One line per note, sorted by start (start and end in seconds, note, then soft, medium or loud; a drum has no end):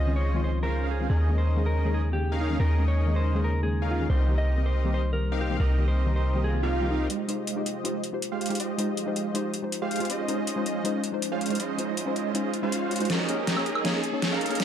0.00 1.08 C#2 medium
0.00 1.07 C#3 medium
0.00 1.06 F3 medium
0.00 0.51 C#4 medium
0.00 1.06 D#4 medium
0.00 0.51 F4 medium
0.00 0.51 G#4 medium
0.00 0.51 C5 medium
0.00 1.07 C5 medium
0.00 0.12 D#5 medium
0.00 0.51 D#5 medium
0.06 0.14 D#3 medium
0.06 0.14 G#3 medium
0.06 0.14 C4 medium
0.06 0.14 C#4 medium
0.06 0.15 F4 medium
0.16 0.40 C#5 medium
0.34 0.60 D#3 medium
0.34 0.60 G#3 medium
0.34 0.61 C4 medium
0.34 0.61 C#4 medium
0.34 0.61 F4 loud
0.44 0.60 C5 medium
0.62 0.98 D#3 medium
0.62 0.98 G#3 medium
0.62 1.08 C#4 medium
0.62 0.98 C#4 medium
0.62 1.08 F4 medium
0.62 0.99 F4 medium
0.62 1.08 G#4 medium
0.62 0.87 A#4 medium
0.62 0.98 C5 medium
0.62 1.08 C5 medium
0.62 1.08 F5 medium
0.91 1.07 G#4 medium
0.99 1.07 D#3 medium
0.99 1.08 G#3 medium
0.99 1.08 C4 medium
0.99 1.08 C#4 medium
0.99 1.08 F4 medium
1.10 2.58 D#2 medium
1.10 4.07 C#3 medium
1.10 4.07 G#3 medium
1.10 7.06 A#3 medium
1.10 2.01 C#4 medium
1.10 2.01 D#4 medium
1.10 7.06 D#4 medium
1.10 1.34 G#4 medium
1.10 2.01 G#4 medium
1.10 2.01 A#4 medium
1.10 2.01 D#5 medium
1.28 1.35 D#3 medium
1.28 1.36 G#3 medium
1.28 1.36 A#3 medium
1.28 1.36 C#4 medium
1.28 1.36 G#4 medium
1.38 1.62 C5 medium
1.56 1.64 D#3 medium
1.56 1.64 G#3 medium
1.56 1.64 A#3 medium
1.56 1.64 C#4 medium
1.56 1.65 G#4 medium
1.66 1.90 A#4 medium
1.84 2.10 D#3 medium
1.84 2.10 G#3 medium
1.84 2.11 A#3 medium
1.84 2.11 C#4 medium
1.84 2.11 G#4 loud
1.94 2.10 G#4 medium
2.12 2.48 D#3 medium
2.12 2.48 G#3 medium
2.12 2.48 A#3 medium
2.12 2.48 C#4 medium
2.12 2.37 G4 medium
2.12 2.49 G#4 medium
2.32 2.58 C#4 medium
2.32 2.58 D#4 medium
2.32 2.58 G#4 medium
2.32 2.58 A#4 medium
2.32 2.58 F5 loud
2.41 2.57 D#4 medium
2.49 2.57 D#3 medium
2.49 2.58 G#3 medium
2.49 2.58 A#3 medium
2.49 2.58 C#4 medium
2.49 2.58 G#4 medium
2.60 4.08 D#2 medium
2.60 3.51 C#4 medium
2.60 3.51 D#4 medium
2.60 3.51 G#4 medium
2.60 2.84 A#4 medium
2.60 3.51 A#4 medium
2.60 3.51 D#5 medium
2.78 2.85 D#3 medium
2.78 2.86 G#3 medium
2.78 2.86 A#3 medium
2.78 2.86 C#4 medium
2.78 2.86 G#4 medium
2.88 3.12 C#5 medium
3.06 3.14 D#3 medium
3.06 3.14 G#3 medium
3.06 3.14 A#3 medium
3.06 3.14 C#4 medium
3.06 3.15 G#4 medium
3.16 3.40 C5 medium
3.34 3.60 D#3 medium
3.34 3.60 G#3 medium
3.34 3.61 A#3 medium
3.34 3.61 C#4 medium
3.34 3.61 G#4 loud
3.44 3.60 A#4 medium
3.62 3.98 D#3 medium
3.62 3.98 G#3 medium
3.62 3.98 A#3 medium
3.62 3.98 C#4 medium
3.62 3.87 G#4 medium
3.62 3.99 G#4 medium
3.82 4.08 C#4 medium
3.82 4.08 D#4 medium
3.82 4.08 G#4 medium
3.82 4.08 A#4 medium
3.82 4.08 F5 loud
3.91 4.07 F4 medium
4.00 4.07 D#3 medium
4.00 4.08 G#3 medium
4.00 4.08 A#3 medium
4.00 4.08 C#4 medium
4.00 4.08 G#4 medium
4.10 5.58 C2 medium
4.10 7.07 C3 medium
4.10 7.07 G3 medium
4.10 5.01 C4 medium
4.10 5.01 D#4 medium
4.10 5.01 G4 medium
4.10 5.01 A#4 medium
4.10 4.34 C5 medium
4.10 5.01 D#5 medium
4.28 4.35 D#3 medium
4.28 4.36 G3 medium
4.28 4.36 A#3 medium
4.28 4.36 C4 medium
4.28 4.36 G4 medium
4.38 4.62 D#5 medium
4.56 4.64 D#3 medium
4.56 4.64 G3 medium
4.56 4.64 A#3 medium
4.56 4.64 C4 medium
4.56 4.65 G4 medium
4.66 4.90 C5 medium
4.84 5.10 D#3 loud
4.84 5.10 G3 medium
4.84 5.11 A#3 medium
4.84 5.11 C4 medium
4.84 5.11 G4 loud
4.94 5.10 C5 medium
5.12 5.48 D#3 medium
5.12 5.48 G3 medium
5.12 5.48 A#3 medium
5.12 5.48 C4 medium
5.12 5.49 G4 medium
5.12 5.37 A#4 medium
5.32 5.58 C4 medium
5.32 5.58 D#4 medium
5.32 5.58 G4 medium
5.32 5.58 A#4 medium
5.32 5.58 F5 loud
5.41 5.57 G4 medium
5.49 5.57 D#3 medium
5.49 5.58 G3 medium
5.49 5.58 A#3 medium
5.49 5.58 C4 medium
5.49 5.58 G4 medium
5.60 7.08 C2 medium
5.60 6.51 C4 medium
5.60 6.51 D#4 medium
5.60 6.51 G4 medium
5.60 5.84 A#4 medium
5.60 6.51 A#4 medium
5.60 6.51 D#5 medium
5.77 5.85 D#3 medium
5.77 5.86 G3 medium
5.77 5.86 A#3 medium
5.77 5.86 C4 medium
5.77 5.86 G4 medium
5.88 6.12 C5 medium
6.06 6.14 D#3 medium
6.06 6.14 G3 medium
6.06 6.14 A#3 medium
6.06 6.14 C4 medium
6.06 6.15 G4 medium
6.16 6.40 C5 medium
6.34 6.51 D#3 medium
6.34 6.51 G3 medium
6.34 6.52 A#3 medium
6.34 6.52 C4 medium
6.34 6.52 G4 loud
6.34 swell medium
6.44 6.60 G#4 medium
6.53 6.79 D#3 medium
6.53 6.79 G3 medium
6.53 6.79 A#3 medium
6.53 6.80 C4 medium
6.53 6.80 G4 medium
6.63 7.08 C4 medium
6.63 7.08 D#4 medium
6.63 6.87 F4 medium
6.63 7.08 G4 medium
6.63 7.08 A#4 medium
6.63 7.08 F5 medium
6.81 6.89 D#3 medium
6.81 6.89 G3 medium
6.81 6.89 A#3 medium
6.81 6.89 C4 medium
6.81 6.90 G4 medium
6.91 7.07 D#4 medium
7.10 10.07 F3 medium
7.10 10.07 G#3 medium
7.10 8.01 G#3 medium
7.10 14.64 D#4 medium
7.10 8.01 F4 medium
7.10 8.01 G4 medium
7.10 10.07 G4 medium
7.10 8.01 C5 medium
7.10 8.01 D#5 medium
7.10 closed hi-hat medium
7.10 riser medium
7.28 7.35 G#3 medium
7.28 7.36 D#4 medium
7.28 7.36 F4 medium
7.28 7.36 G4 medium
7.28 7.36 C5 medium
7.28 closed hi-hat medium
7.47 closed hi-hat medium
7.56 7.64 G#3 medium
7.56 7.64 D#4 medium
7.56 7.64 F4 medium
7.56 7.64 G4 medium
7.56 7.65 C5 medium
7.66 closed hi-hat medium
7.84 8.10 G#3 loud
7.84 8.10 D#4 medium
7.84 8.11 F4 medium
7.84 8.11 G4 medium
7.84 8.11 C5 loud
7.84 closed hi-hat medium
8.04 closed hi-hat medium
8.12 8.48 G#3 medium
8.12 8.48 D#4 medium
8.12 8.48 F4 medium
8.12 8.48 G4 medium
8.12 8.49 C5 medium
8.22 closed hi-hat medium
8.32 8.58 G#3 medium
8.32 8.58 F4 medium
8.32 8.58 G4 medium
8.32 8.58 C5 medium
8.32 8.58 F5 medium
8.41 closed hi-hat soft
8.46 8.57 G#3 medium
8.46 closed hi-hat medium
8.50 8.58 D#4 medium
8.50 8.58 F4 medium
8.50 8.58 G4 medium
8.50 8.58 C5 medium
8.50 closed hi-hat soft
8.55 closed hi-hat medium
8.60 9.51 G#3 medium
8.60 9.51 F4 medium
8.60 9.51 G4 medium
8.60 9.51 C5 medium
8.60 9.51 D#5 medium
8.60 closed hi-hat medium
8.78 8.85 G#3 medium
8.78 8.86 D#4 medium
8.78 8.86 F4 medium
8.78 8.86 G4 medium
8.78 8.86 C5 medium
8.78 closed hi-hat medium
8.97 closed hi-hat medium
9.06 9.14 G#3 medium
9.06 9.14 D#4 medium
9.06 9.14 F4 medium
9.06 9.14 G4 medium
9.06 9.15 C5 medium
9.16 closed hi-hat medium
9.34 9.60 G#3 loud
9.34 9.60 D#4 medium
9.34 9.61 F4 medium
9.34 9.61 G4 medium
9.34 9.61 C5 loud
9.34 closed hi-hat medium
9.54 closed hi-hat medium
9.62 9.98 G#3 medium
9.62 9.98 D#4 medium
9.62 9.98 F4 medium
9.62 9.98 G4 medium
9.62 9.99 C5 medium
9.72 closed hi-hat medium
9.82 10.08 G#3 medium
9.82 10.08 F4 medium
9.82 10.08 G4 medium
9.82 10.08 C5 medium
9.82 10.08 F5 loud
9.91 closed hi-hat soft
9.96 10.07 G#3 medium
9.96 closed hi-hat medium
10.00 10.08 D#4 medium
10.00 10.08 F4 medium
10.00 10.08 G4 medium
10.00 10.08 C5 medium
10.00 closed hi-hat soft
10.05 closed hi-hat medium
10.10 13.07 F3 medium
10.10 11.01 G#3 medium
10.10 11.01 C#4 medium
10.10 14.64 C#4 medium
10.10 11.01 F4 medium
10.10 11.01 C5 medium
10.10 13.07 C5 medium
10.10 11.01 D#5 medium
10.10 closed hi-hat medium
10.28 10.35 G#3 medium
10.28 10.36 C#4 medium
10.28 10.36 D#4 medium
10.28 10.36 F4 medium
10.28 10.36 C5 medium
10.28 closed hi-hat medium
10.47 closed hi-hat medium
10.56 10.64 G#3 medium
10.56 10.64 C#4 medium
10.56 10.64 D#4 medium
10.56 10.64 F4 medium
10.56 10.65 C5 loud
10.66 closed hi-hat medium
10.84 11.10 G#3 loud
10.84 11.10 C#4 medium
10.84 11.11 D#4 medium
10.84 11.11 F4 medium
10.84 11.11 C5 loud
10.84 closed hi-hat medium
11.04 closed hi-hat medium
11.12 11.48 G#3 medium
11.12 11.48 C#4 medium
11.12 11.48 D#4 medium
11.12 11.48 F4 medium
11.12 11.49 C5 medium
11.22 closed hi-hat medium
11.32 11.58 G#3 medium
11.32 11.58 C#4 medium
11.32 11.58 F4 medium
11.32 11.58 C5 medium
11.32 11.58 F5 loud
11.41 closed hi-hat soft
11.46 11.57 G#3 medium
11.46 closed hi-hat medium
11.50 11.58 C#4 medium
11.50 11.58 D#4 medium
11.50 11.58 F4 medium
11.50 11.58 C5 medium
11.50 closed hi-hat soft
11.55 closed hi-hat medium
11.60 12.51 G#3 medium
11.60 12.51 C#4 medium
11.60 12.51 F4 medium
11.60 12.51 C5 medium
11.60 12.51 D#5 medium
11.60 closed hi-hat medium
11.77 11.85 G#3 medium
11.77 11.86 C#4 medium
11.77 11.86 D#4 medium
11.77 11.86 F4 medium
11.77 11.86 C5 loud
11.77 closed hi-hat medium
11.97 closed hi-hat medium
12.06 12.14 G#3 medium
12.06 12.14 C#4 medium
12.06 12.14 D#4 medium
12.06 12.14 F4 medium
12.06 12.15 C5 loud
12.16 closed hi-hat medium
12.34 12.60 G#3 loud
12.34 12.60 C#4 medium
12.34 12.61 D#4 medium
12.34 12.61 F4 medium
12.34 12.61 C5 loud
12.34 closed hi-hat medium
12.54 closed hi-hat medium
12.62 12.98 G#3 medium
12.62 13.08 G#3 medium
12.62 12.98 C#4 medium
12.62 13.08 C#4 medium
12.62 12.98 D#4 medium
12.62 13.08 F4 medium
12.62 12.98 F4 medium
12.62 13.08 C5 medium
12.62 12.99 C5 medium
12.62 13.08 F5 medium
12.72 closed hi-hat medium
12.91 closed hi-hat soft
12.96 13.07 G#3 medium
12.96 closed hi-hat medium
13.00 13.08 C#4 medium
13.00 13.08 D#4 medium
13.00 13.08 F4 medium
13.00 13.08 C5 medium
13.00 closed hi-hat soft
13.05 closed hi-hat medium
13.10 14.64 G#3 medium
13.10 14.01 C#4 medium
13.10 14.01 D#4 medium
13.10 14.01 G#4 medium
13.10 14.01 A#4 medium
13.10 14.64 A#4 medium
13.10 14.01 D#5 medium
13.10 snare soft
13.10 closed hi-hat medium
13.28 13.35 A#3 medium
13.28 13.36 C#4 medium
13.28 13.36 D#4 medium
13.28 13.36 G#4 medium
13.28 13.36 C#5 medium
13.28 closed hi-hat medium
13.47 snare soft
13.47 closed hi-hat medium
13.56 13.64 A#3 medium
13.56 13.64 C#4 medium
13.56 13.64 D#4 medium
13.56 13.64 G#4 medium
13.56 13.65 C#5 loud
13.56 high woodblock medium
13.66 closed hi-hat medium
13.75 high woodblock medium
13.84 14.10 A#3 loud
13.84 14.11 C#4 medium
13.84 14.11 D#4 medium
13.84 14.11 G#4 medium
13.84 14.11 C#5 loud
13.84 snare soft
13.84 closed hi-hat medium
14.04 closed hi-hat medium
14.12 14.48 A#3 medium
14.12 14.48 C#4 medium
14.12 14.48 D#4 medium
14.12 14.48 G#4 medium
14.12 14.49 C#5 medium
14.22 snare medium
14.22 closed hi-hat medium
14.32 14.58 C#4 medium
14.32 14.58 D#4 medium
14.32 14.58 G#4 medium
14.32 14.58 A#4 medium
14.32 14.58 F5 loud
14.41 closed hi-hat soft
14.46 14.57 A#3 medium
14.46 closed hi-hat medium
14.50 14.58 C#4 medium
14.50 14.58 D#4 medium
14.50 14.58 G#4 medium
14.50 14.58 C#5 medium
14.50 closed hi-hat soft
14.55 closed hi-hat medium
14.60 14.64 C#4 medium
14.60 14.64 D#4 medium
14.60 14.64 G#4 medium
14.60 14.64 A#4 medium
14.60 14.64 D#5 medium
14.60 snare medium
14.60 closed hi-hat medium